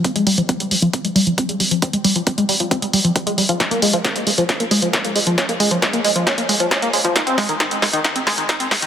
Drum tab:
HH |xxoxxxoxxxoxxxox|xxoxxxoxxxoxxxox|xxoxxxoxxxoxxxox|xxoxxxoxxxoxxxox|
SD |----------------|----------------|o---o---o---o---|o---o---o---o---|
BD |o---o---o---o---|o---o---o---o---|o---o---o---o---|o---o---o---o---|

HH |xxoxxxoxxxoxxxox|
SD |o-o-o-o-o-o-o-o-|
BD |o---o---o---o---|